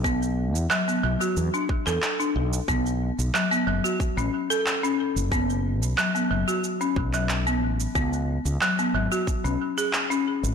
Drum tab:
SH |xx-xxx-xxx-xxx-x|xx-xxx-xxx-xxx-x|xx-xxx-xxx-xxx-x|xx-xxx-xxx-xxx-x|
CP |----x------xx---|----x-------x---|----x------xx---|----x-------x---|
BD |o---------o-----|o-------o-------|o---------o-----|o-------o-------|